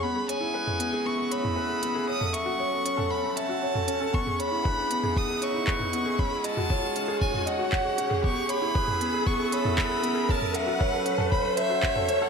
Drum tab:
HH |--x---x---x---x-|--x---x---x---x-|--x---x---x---x-|--x---x---x---x-|
CP |----------------|----------------|------------x---|------------x---|
T2 |-----o-----o----|-o-----o-----o--|-o-----o-----o--|---o-----o-----o|
BD |----------------|----------------|o---o---o---o---|o---o---o---o---|

HH |--x---x---x---x-|--x---x---x---x-|
CP |------------x---|------------x---|
T2 |-----o-----o----|-o-----o-----o--|
BD |o---o---o---o---|o---o---o---o---|